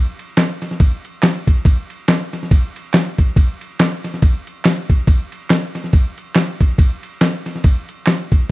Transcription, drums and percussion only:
0.19 ride, tambourine
0.37 snare, clap, ride, tambourine
0.61 snare, ride, tambourine
0.71 snare
0.80 kick, ride, tambourine
1.05 ride, tambourine
1.23 snare, clap, ride, tambourine
1.47 kick, ride, tambourine
1.65 kick, ride, tambourine
1.90 ride, tambourine
2.08 snare, clap, ride, tambourine
2.32 snare, ride, tambourine
2.43 snare
2.51 kick, ride, tambourine
2.76 ride, tambourine
2.94 snare, clap, ride, tambourine
3.18 kick, ride, tambourine
3.36 kick, ride, tambourine
3.61 ride, tambourine
3.79 snare, clap, ride, tambourine
4.03 snare, ride, tambourine
4.14 snare
4.22 kick, ride, tambourine
4.47 ride, tambourine
4.65 snare, clap, ride, tambourine
4.90 kick, ride, tambourine
5.07 kick, ride, tambourine
5.32 ride, tambourine
5.50 snare, clap, ride, tambourine
5.73 snare, ride, tambourine
5.84 snare
5.93 kick, ride, tambourine
6.18 ride, tambourine
6.35 snare, clap, ride, tambourine
6.60 kick, ride, tambourine
6.78 kick, ride, tambourine
7.03 ride, tambourine
7.21 snare, clap, ride, tambourine
7.45 snare, ride, tambourine
7.55 snare
7.64 kick, ride, tambourine
7.89 ride, tambourine
8.06 snare, clap, ride, tambourine
8.31 kick, ride, tambourine

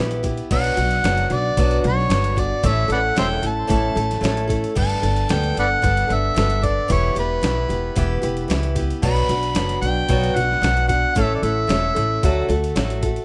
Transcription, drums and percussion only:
0.11 closed hi-hat
0.24 kick, closed hi-hat
0.38 closed hi-hat
0.51 kick, crash
0.64 closed hi-hat
0.77 closed hi-hat
0.91 closed hi-hat
1.04 snare, closed hi-hat
1.17 closed hi-hat
1.30 closed hi-hat
1.57 kick, closed hi-hat
1.71 closed hi-hat
1.84 closed hi-hat
1.99 snare
2.10 snare, closed hi-hat
2.24 closed hi-hat
2.37 kick, closed hi-hat
2.64 kick, closed hi-hat
2.90 closed hi-hat
3.16 snare, closed hi-hat
3.43 closed hi-hat
3.70 kick, closed hi-hat
3.97 closed hi-hat
4.11 snare, closed hi-hat
4.24 snare, closed hi-hat
4.37 closed hi-hat
4.50 kick, closed hi-hat
4.64 closed hi-hat
4.76 kick, crash
4.90 closed hi-hat
5.03 closed hi-hat
5.16 closed hi-hat
5.29 snare, closed hi-hat
5.43 closed hi-hat
5.57 closed hi-hat
5.84 kick, closed hi-hat
5.97 closed hi-hat
6.10 closed hi-hat
6.36 snare, closed hi-hat
6.50 closed hi-hat
6.64 kick, closed hi-hat
6.90 kick, closed hi-hat
7.16 closed hi-hat
7.43 snare, closed hi-hat
7.70 closed hi-hat
7.96 kick, closed hi-hat
8.23 closed hi-hat
8.37 closed hi-hat
8.50 snare, closed hi-hat
8.63 closed hi-hat
8.76 kick, closed hi-hat
8.90 closed hi-hat
9.03 kick, crash
9.17 closed hi-hat
9.29 closed hi-hat
9.43 closed hi-hat
9.55 snare, closed hi-hat
9.69 closed hi-hat
9.83 closed hi-hat
10.09 kick, closed hi-hat
10.23 closed hi-hat
10.37 closed hi-hat
10.51 snare
10.63 snare, closed hi-hat
10.77 closed hi-hat
10.89 kick, closed hi-hat
11.16 kick, closed hi-hat
11.43 closed hi-hat
11.69 snare, closed hi-hat
11.96 closed hi-hat
12.23 kick, closed hi-hat
12.50 closed hi-hat
12.64 closed hi-hat
12.76 snare, closed hi-hat
12.90 closed hi-hat
13.03 kick, closed hi-hat
13.16 closed hi-hat

